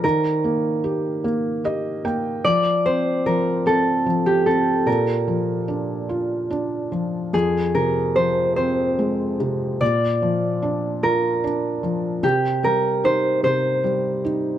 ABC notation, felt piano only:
X:1
M:6/8
L:1/8
Q:3/8=49
K:Bb
V:1 name="Felt piano"
E, B, G B, [Ge] [B,g] | F, C F, C F, C | B,, F, D F D F, | F,, C, F, C _A, C, |
B,, F, D F D F, | C, G, E C, G, E |]